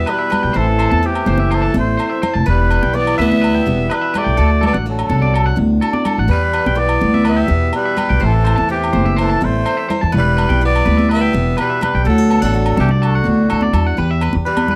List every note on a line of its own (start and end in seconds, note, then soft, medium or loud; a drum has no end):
0.00 0.54 E2 medium
0.00 0.51 B2 medium
0.00 1.02 E3 medium
0.00 0.55 G3 medium
0.00 0.11 B3 medium
0.00 0.29 G4 medium
0.00 0.11 E5 loud
0.06 0.58 G3 medium
0.06 0.54 B3 medium
0.06 0.18 B4 medium
0.06 0.59 B4 medium
0.06 low agogo medium
0.19 0.30 E5 medium
0.30 0.52 G4 medium
0.30 0.42 B4 medium
0.30 low conga medium
0.30 low agogo medium
0.43 0.54 B1 medium
0.43 0.54 G5 medium
0.53 0.85 A1 medium
0.53 1.74 A2 medium
0.53 1.07 E3 medium
0.53 1.02 C4 medium
0.53 1.07 A4 loud
0.53 0.66 C5 medium
0.79 1.26 A3 medium
0.79 0.90 C5 medium
0.79 low agogo medium
0.91 1.21 E2 medium
0.91 1.02 A5 medium
0.91 high conga medium
1.03 2.44 E3 medium
1.03 1.98 C4 medium
1.03 1.56 G4 medium
1.07 1.55 E3 medium
1.15 low agogo medium
1.26 1.67 F#1 medium
1.26 2.44 A3 medium
1.26 1.38 C5 medium
1.26 high conga medium
1.26 low conga medium
1.38 1.50 E5 medium
1.38 high conga medium
1.51 1.62 C5 medium
1.51 low agogo medium
1.55 1.77 E3 medium
1.55 1.77 A4 medium
1.62 1.73 A5 medium
1.74 1.95 A1 medium
1.74 2.45 E2 medium
1.74 2.21 A3 medium
1.74 2.22 E4 medium
1.74 high conga medium
1.74 low conga medium
1.79 2.22 C5 medium
1.97 2.44 C4 medium
1.97 2.09 C5 medium
1.97 low agogo medium
2.10 2.21 E5 medium
2.22 3.66 E4 medium
2.22 2.34 C5 medium
2.22 low conga medium
2.22 low agogo medium
2.34 2.45 F1 medium
2.34 2.45 A5 medium
2.46 2.77 E1 loud
2.46 2.98 G3 medium
2.46 2.93 B3 medium
2.46 2.58 B4 medium
2.46 2.96 B4 medium
2.46 muted steel-string acoustic guitar stroke medium
2.71 3.17 G3 medium
2.71 2.82 B4 medium
2.71 low agogo medium
2.83 3.13 B1 medium
2.83 2.94 G5 medium
2.83 high conga medium
2.93 4.35 E3 medium
2.93 3.89 B3 medium
2.93 3.19 B3 medium
2.93 3.17 D5 medium
3.07 low agogo medium
3.18 3.58 D2 medium
3.18 4.38 G3 medium
3.18 3.95 B3 loud
3.18 3.30 B4 medium
3.18 3.94 E5 loud
3.18 high conga medium
3.31 3.42 E5 medium
3.31 high conga medium
3.41 3.53 B4 medium
3.41 low agogo medium
3.55 3.66 G5 medium
3.66 3.86 E1 medium
3.66 4.35 B2 medium
3.66 4.13 G4 medium
3.66 high conga medium
3.66 low conga medium
3.90 4.19 G3 medium
3.90 4.38 B3 medium
3.90 4.01 B4 medium
3.90 4.19 B4 medium
3.90 low agogo medium
4.01 4.13 E5 medium
4.14 4.35 G4 medium
4.14 4.25 B4 medium
4.14 low conga medium
4.14 low agogo medium
4.18 4.64 A3 medium
4.18 4.64 D5 loud
4.24 4.36 B1 medium
4.24 4.36 G5 medium
4.37 4.68 D2 medium
4.37 6.29 D3 medium
4.37 4.85 F#4 medium
4.37 4.49 A4 medium
4.61 4.73 A4 medium
4.61 low conga medium
4.61 low agogo medium
4.66 4.76 B3 medium
4.66 4.76 D5 medium
4.73 5.04 A1 medium
4.73 4.85 F#5 medium
4.73 high conga medium
4.86 5.56 F#3 medium
4.86 6.27 A3 medium
4.86 5.56 F#4 medium
4.91 5.56 A4 medium
4.99 low agogo medium
5.09 5.50 C2 medium
5.09 6.27 D4 medium
5.09 5.21 A4 medium
5.09 high conga medium
5.09 low conga medium
5.22 5.33 D5 medium
5.22 high conga medium
5.34 5.45 A4 medium
5.34 low agogo medium
5.46 5.57 F#5 medium
5.56 5.78 D2 medium
5.56 6.29 A2 medium
5.56 5.81 F#4 medium
5.56 high conga medium
5.56 low conga medium
5.81 6.05 F#4 medium
5.81 5.93 A4 medium
5.81 low agogo medium
5.93 6.05 D5 medium
5.93 high conga medium
6.05 6.27 F#4 medium
6.05 6.17 A4 medium
6.05 low conga medium
6.05 low agogo medium
6.18 6.28 A1 medium
6.18 6.30 F#5 medium
6.28 8.21 E2 medium
6.28 6.59 E2 medium
6.28 6.80 G3 medium
6.28 6.74 B3 medium
6.28 6.78 B4 medium
6.28 6.42 B4 medium
6.53 7.00 G3 medium
6.53 6.66 B4 medium
6.53 low agogo medium
6.66 6.96 B1 medium
6.66 6.77 G5 medium
6.66 high conga medium
6.75 8.68 E3 medium
6.75 7.72 B3 medium
6.75 7.26 B3 medium
6.75 7.25 D5 medium
6.89 low agogo medium
7.01 7.42 D2 medium
7.01 8.21 G3 medium
7.01 high conga medium
7.01 low conga medium
7.14 7.25 E5 medium
7.14 high conga medium
7.24 7.71 B3 medium
7.24 7.37 B4 medium
7.24 low agogo medium
7.29 7.72 E5 medium
7.37 7.48 G5 medium
7.48 7.70 E2 medium
7.48 8.18 B2 medium
7.48 7.95 G4 medium
7.48 high conga medium
7.48 low conga medium
7.73 8.25 G3 medium
7.73 8.20 B3 medium
7.73 8.26 B4 medium
7.73 low agogo medium
7.85 7.97 E5 medium
7.97 8.18 G4 medium
7.97 8.09 B4 medium
7.97 low conga medium
7.97 low agogo medium
8.09 8.20 B1 medium
8.09 8.21 G5 medium
8.20 8.52 A1 medium
8.20 9.41 A2 medium
8.20 8.71 E3 medium
8.20 8.68 C4 medium
8.20 8.33 C5 medium
8.25 8.71 A4 medium
8.44 8.92 A3 medium
8.44 8.57 C5 medium
8.44 low agogo medium
8.56 8.88 E2 medium
8.56 8.68 A5 medium
8.56 high conga medium
8.69 10.11 E3 medium
8.69 9.16 E3 medium
8.69 9.66 C4 medium
8.69 9.15 G4 medium
8.84 low agogo medium
8.93 9.34 F#1 medium
8.93 10.11 A3 medium
8.93 9.05 C5 medium
8.93 high conga medium
8.93 low conga medium
9.05 9.17 E5 medium
9.05 high conga medium
9.17 9.29 C5 medium
9.17 low agogo medium
9.21 9.45 E3 medium
9.21 9.46 A4 medium
9.30 9.41 A5 medium
9.41 9.63 A1 medium
9.41 10.11 E2 medium
9.41 9.91 A3 medium
9.41 9.89 E4 medium
9.41 high conga medium
9.41 low conga medium
9.45 9.91 C5 medium
9.65 10.12 C4 medium
9.65 9.77 C5 medium
9.65 low agogo medium
9.77 9.89 E5 medium
9.88 11.33 E4 medium
9.88 10.01 C5 medium
9.88 low conga medium
9.88 low agogo medium
10.01 10.12 E2 medium
10.01 10.13 A5 medium
10.12 10.44 E1 loud
10.12 12.05 E2 medium
10.12 10.61 B3 medium
10.12 10.24 B4 medium
10.18 10.61 G3 medium
10.18 10.61 B4 medium
10.37 10.85 G3 medium
10.37 10.49 B4 medium
10.37 low agogo medium
10.49 10.80 B1 medium
10.49 10.61 G5 medium
10.49 high conga medium
10.61 12.03 E3 medium
10.61 12.06 B3 medium
10.65 11.08 B3 medium
10.65 11.09 D5 loud
10.76 low agogo medium
10.85 11.26 D2 medium
10.85 12.06 G3 medium
10.85 10.97 B4 medium
10.85 high conga medium
10.85 low conga medium
10.97 11.09 E5 medium
10.97 high conga medium
11.09 11.21 B4 medium
11.09 11.56 E5 medium
11.09 low agogo medium
11.14 11.57 B3 medium
11.21 11.33 G5 medium
11.33 11.54 E1 medium
11.33 11.56 B2 medium
11.33 12.03 G4 medium
11.33 high conga medium
11.33 low conga medium
11.57 11.81 B2 medium
11.57 11.69 B4 medium
11.57 11.81 B4 medium
11.57 low agogo medium
11.61 11.82 G3 medium
11.70 11.81 E5 medium
11.81 12.06 C3 medium
11.81 12.05 G3 medium
11.81 11.94 B4 medium
11.81 12.04 B4 medium
11.81 low conga medium
11.81 low agogo medium
11.95 12.04 B1 medium
11.95 12.06 G5 medium
12.05 12.36 D2 medium
12.05 13.98 D3 medium
12.05 12.18 E4 medium
12.05 12.39 A4 medium
12.05 muted clean electric guitar stroke medium
12.09 12.41 F#3 medium
12.18 12.53 F#4 soft
12.29 12.42 B3 medium
12.29 12.42 A4 medium
12.29 low agogo medium
12.42 12.72 A1 medium
12.42 12.77 F#3 medium
12.42 12.76 D4 soft
12.42 12.77 A4 medium
12.42 12.53 F#5 medium
12.42 high conga medium
12.54 13.95 A3 medium
12.54 13.73 F#4 medium
12.66 low agogo medium
12.77 13.18 C2 medium
12.77 12.90 E3 medium
12.77 13.25 D4 medium
12.77 12.90 G4 medium
12.77 12.89 A4 medium
12.77 high conga medium
12.77 low conga medium
12.89 13.02 D5 medium
12.89 high conga medium
13.02 13.72 D3 medium
13.02 13.70 F#4 medium
13.02 13.13 A4 medium
13.02 low agogo medium
13.15 13.26 F#5 medium
13.24 13.46 D2 medium
13.24 13.98 A2 medium
13.24 13.49 D4 medium
13.24 high conga medium
13.50 13.72 D2 medium
13.50 13.95 D4 medium
13.50 13.62 A4 medium
13.50 low agogo medium
13.61 13.73 D5 medium
13.61 high conga medium
13.73 13.95 E2 medium
13.73 13.95 F#4 medium
13.73 13.85 A4 medium
13.73 low conga medium
13.73 low agogo medium
13.87 13.98 F#5 medium
13.97 14.76 E2 medium
13.97 14.28 E2 medium
13.97 14.21 G4 medium
13.97 14.10 B4 medium
14.11 14.22 E5 medium
14.21 14.76 G4 medium
14.21 14.34 B4 medium
14.21 low agogo medium
14.33 14.74 E2 medium
14.33 high conga medium
14.46 14.76 E3 medium
14.46 14.76 G3 medium
14.46 14.76 B4 loud
14.57 high conga medium
14.57 low agogo medium
14.68 14.76 B4 medium
14.68 low conga medium